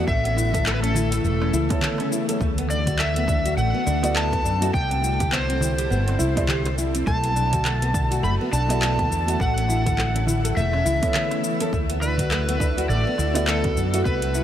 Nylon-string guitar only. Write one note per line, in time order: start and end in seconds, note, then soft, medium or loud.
0.08 0.23 A3 loud
0.26 0.36 C#4 medium
0.36 0.53 E4 medium
0.54 0.65 A4 medium
0.66 0.76 A3 loud
0.83 0.94 C#4 medium
0.95 1.10 E4 medium
1.13 1.23 A4 medium
1.24 1.41 A3 loud
1.42 1.52 C#4 medium
1.53 1.70 E4 loud
1.71 1.82 A4 medium
1.83 1.92 A3 loud
2.00 2.11 C#4 medium
2.12 2.27 E4 medium
2.29 2.39 A4 loud
2.41 2.57 A3 loud
2.58 2.69 B3 loud
2.70 2.86 D4 medium
2.87 2.98 F#4 medium
2.99 3.15 A3 loud
3.17 3.27 B3 loud
3.28 3.44 D4 medium
3.46 3.56 F#4 loud
3.57 3.73 A3 loud
3.74 3.85 B3 medium
3.87 4.03 D4 medium
4.03 4.15 F#4 medium
4.15 4.32 A3 loud
4.32 4.44 B3 loud
4.44 4.60 D4 medium
4.62 4.72 F#4 loud
4.73 4.89 B3 loud
4.90 5.02 C4 medium
5.02 5.19 E4 medium
5.19 5.31 G4 medium
5.31 5.41 B3 loud
5.49 5.60 C4 medium
5.61 5.76 E4 medium
5.78 5.89 G4 medium
5.90 6.07 B3 loud
6.08 6.18 C4 medium
6.19 6.35 E4 loud
6.37 6.47 G4 medium
6.48 6.65 G4 loud
6.66 6.77 C5 medium
6.78 6.93 E4 medium
6.95 7.05 C4 medium
7.07 7.23 A3 loud
7.24 7.35 B3 medium
7.36 7.52 D4 medium
7.53 7.64 F#4 medium
7.65 7.81 A3 loud
7.82 7.93 B3 loud
7.94 8.11 D4 medium
8.11 8.22 F#4 medium
8.23 8.39 A3 loud
8.41 8.51 B3 medium
8.52 8.69 D4 medium
8.70 8.81 F#4 medium
8.82 8.98 A3 loud
8.99 9.10 B3 loud
9.10 9.26 D4 medium
9.28 9.38 F#4 loud
9.40 9.55 A3 loud
9.57 9.68 C#4 medium
9.69 9.85 E4 medium
9.86 9.97 A4 medium
9.98 10.08 A3 loud
10.15 10.26 C#4 medium
10.27 10.42 E4 medium
10.44 10.55 A4 medium
10.57 10.73 A3 loud
10.74 10.84 C#4 medium
10.85 11.02 E4 loud
11.03 11.14 A4 medium
11.14 11.24 A3 loud
11.32 11.43 C#4 medium
11.44 11.59 E4 medium
11.62 11.72 A4 loud
11.73 11.89 A3 loud
11.91 12.01 B3 loud
12.02 12.18 D4 medium
12.20 12.30 F#4 medium
12.31 12.47 A3 loud
12.49 12.60 B3 loud
12.60 12.77 D4 medium
12.77 12.88 F#4 loud
12.90 13.05 A3 loud
13.07 13.17 B3 loud
13.19 13.35 D4 medium
13.36 13.47 F#4 medium
13.48 13.64 A3 loud
13.65 13.76 B3 loud
13.77 13.92 D4 medium
13.94 14.05 F#4 loud
14.06 14.21 B3 loud
14.24 14.34 C4 medium
14.35 14.44 E4 medium